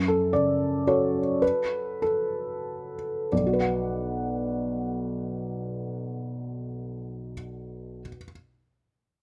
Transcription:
felt piano
Already playing: F#2
0.08 A4
0.33 C#3 D5
0.87 F#4 A4 C#5
1.42 B4
2.02 A4
3.32 B1 D5
3.39 B2
3.47 F#4
3.53 B4
3.60 F#5

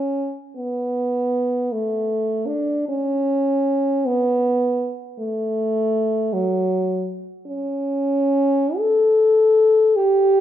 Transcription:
french horn
Already playing: C#4
0.57 B3
1.72 A3
2.47 D4
2.89 C#4
4.06 B3
5.20 A3
6.33 F#3
7.47 C#4
8.77 A4
9.96 G4

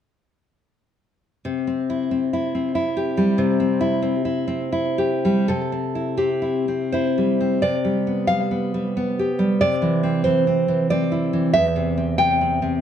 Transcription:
nylon-string guitar
1.45 C3
1.67 C4
1.90 E4
2.11 C4
2.33 E4
2.55 C4
2.75 E4
2.97 G4
3.17 G3
3.38 C3
3.60 C4
3.81 E4
4.02 C4
4.25 E4
4.48 C4
4.72 E4
4.98 G4
5.25 G3
5.48 C3 A4
5.72 C4
5.95 E4
6.17 C4 G4
6.42 E4
6.68 C4
6.92 E4 C5
7.18 G3
7.41 C4
7.62 C3 D5
7.85 G3
8.07 B3
8.27 G3 F5
8.51 B3
8.74 G3
8.97 B3
9.19 G4
9.39 G3
9.61 C3 D5
9.82 E3
10.03 C4
10.24 E3 C5
10.47 C4
10.68 E3
10.90 C4 D5
11.12 E4
11.33 E3
11.53 E2 E5
11.76 C3
11.97 C4
12.18 C3 G5
12.41 C4
12.62 C3

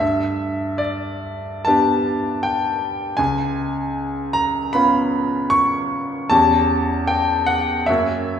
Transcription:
grand piano
0.00 G2 E5
0.78 D5
1.65 B3 D4 G4 A5
2.43 G5
3.17 C#2 G#5
4.33 A#5
4.73 B3 C#4 F4 B5
5.50 C#6
6.30 E2 C#4 G4 A5
7.07 G5
7.46 F#5
7.86 F#2 A#3 C#4 F#4 E5

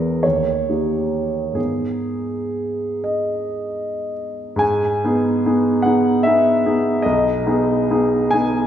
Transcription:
grand piano
Already playing: E2 G#3 B3 G#4 A#4 B4
0.23 D#2 C#5
0.69 A#3 D#4 G4
1.53 G#2 B3 D#4 G#4
3.04 D#5
4.56 G#2 G#5
5.04 B3 D#4 G#4
5.46 B3 D#4 G#4
5.82 B3 D#4 G#4 F#5
6.23 B3 D#4 G#4 E5
6.66 B3 D#4 G#4
7.02 B1 D#5
7.46 B3 D#4 G#4
7.90 B3 D#4 G#4
8.31 B3 D#4 G#4 G#5

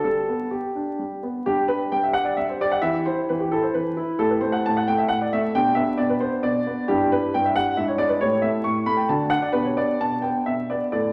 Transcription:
grand piano
0.04 G3 A4
0.29 B3
0.51 G4
0.75 D4
0.99 G3
1.23 B3
1.46 G3 D4 G4
1.68 G4 B4
1.92 G3 G5
2.03 E5
2.13 G4 F#5
2.25 D5
2.37 G3 E5
2.49 C5
2.61 G4 D5
2.71 F#5
2.82 E3 E4 G4 E5
3.06 E4 C5
3.29 E3 B4
3.40 G4
3.52 E4 A4
3.62 C5
3.74 E3 B4
3.97 E4
4.19 A2 E4 G4 A4
4.30 B4
4.41 A3 C5
4.52 F#5
4.66 A2 A5
4.77 F#5
4.88 A3 G5
4.98 E5
5.08 A2 F#5
5.22 D5
5.33 A3 E5
5.55 B2 D4 G4 G5
5.75 B3 E5
5.98 B2 D5
6.09 B4
6.20 B3 C5
6.43 B2 D5
6.67 B3
6.88 G2 D4 E4 G4
7.12 G3 B4
7.34 G2 G5
7.45 E5
7.56 G3 F#5
7.77 G#2 D4 E4 E5
7.88 C#5
7.98 G#3 D5
8.09 B4
8.21 A2 E4 G4 C#5
8.42 A3 E5
8.64 A2 C#6
8.86 A3 B5
8.97 G5
9.09 D3 D4 F#4 A5
9.30 D4 F#5
9.42 D5
9.52 B2 D4 G4 B4
9.65 C#5
9.77 B3 D5
10.01 B2 A5
10.22 B3 G5
10.46 B2 E5
10.70 B3 D5
10.92 A2 E4 A4 D5

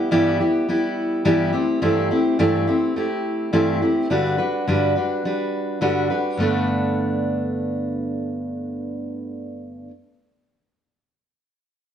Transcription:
steel-string acoustic guitar
Already playing: G3 B3 E4 G4
0.11 G2 E3 G3 B3 E4 G4
0.40 G3 B3 E4 G4
0.68 G3 B3 E4 G4
1.25 G2 E3 G3 B3 E4 G4
1.52 A3 C4 E4 G4
1.82 G2 E3 A3 C4 E4 G4
2.11 A3 C4 E4 G4
2.39 G2 E3 A3 C4 E4 G4
2.67 A3 C4 E4 G4
2.96 A3 C4 E4 G4
3.53 G2 E3 A3 C4 E4 G4
3.82 A3 C4 E4 G4
4.10 G2 D3 G3 D4 F#4 B4
4.38 G3 D4 F#4 B4
4.67 G2 D3 G3 D4 F#4 B4
4.96 G3 D4 F#4 B4
5.25 G3 D4 F#4 B4
5.81 G2 D3 G3 D4 F#4 B4
6.10 G3 D4 F#4 B4
6.37 G2 D3 A3 B3
6.42 D4 B4

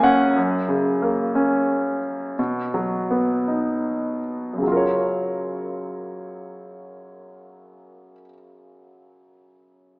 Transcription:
grand piano
Already playing: F#1 F#2 A#3 C#4 G#5
0.03 C#4 F#5
0.36 F#2
0.68 C#3
1.02 A#3
1.35 C#4
2.39 B2
2.74 F#3
3.11 B3
3.48 D#4
4.53 F#2
4.58 C#3
4.63 F#3
4.67 F4
4.72 A#4
4.77 C#5

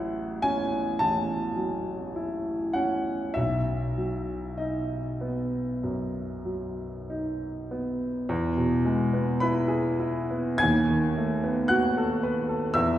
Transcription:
grand piano
Already playing: A1 F#3 E4 F#5
0.42 C#4 G#5
0.99 A1 A5
1.56 F#3
2.16 E4
2.73 C#4 F#5
3.34 B1 E5
3.98 F#3
4.58 D#4 D#5
5.21 B3
5.83 F#2
6.45 F#3
7.10 D#4
7.71 B3
8.29 E2
8.57 B2
8.85 G#3
9.13 B3
9.40 E4 B4 B5
9.68 G#4
9.99 E4
10.31 B3
10.58 D#2 G#5 G#6
10.89 D#3
11.17 A3
11.44 B3
11.68 F#4 F#5 F#6
11.97 A4
12.23 B4
12.49 A4
12.74 E2 E5 E6

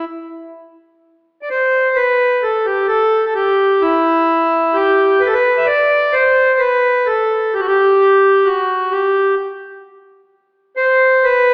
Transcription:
accordion
1.42 D5
1.50 C5
1.96 B4
2.43 A4
2.66 G4
2.88 A4
3.26 A4
3.35 G4
3.82 E4
4.74 G4
5.21 B4
5.27 A4
5.33 B4
5.58 E5
5.67 D5
6.13 C5
6.59 B4
7.07 A4
7.54 G4
7.60 F#4
7.67 G4
8.45 F#4
8.91 G4
10.77 C5
11.24 B4

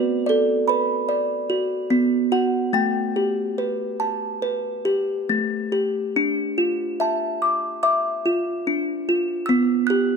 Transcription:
music box
Already playing: B3 F#4 B4
0.26 A4 D5
0.68 B4 B5
1.09 D5
1.50 F#4
1.90 B3
2.32 F#4 F#5
2.73 A3 G5
3.16 G4
3.58 B4
4.00 A5
4.42 B4
4.85 G4
5.29 A3
5.72 G4
6.16 D4
6.58 F4
7.00 E5 A5
7.42 D6
7.83 E5 D6
8.26 F4
8.67 D4
9.09 F4
9.46 B3 E6
9.87 G4 F#6

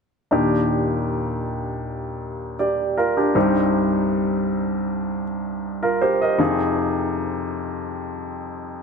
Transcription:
grand piano
0.31 D#2 A#2 D4 D#4 G4
2.59 G4 D5
2.97 F4 A#4
3.17 D4 G4
3.34 C2 G2 C4 D#4 G4
5.83 F4 A#4
6.01 G4 C5
6.22 A#4 D#5
6.38 F2 C3 D#4 F4 G#4

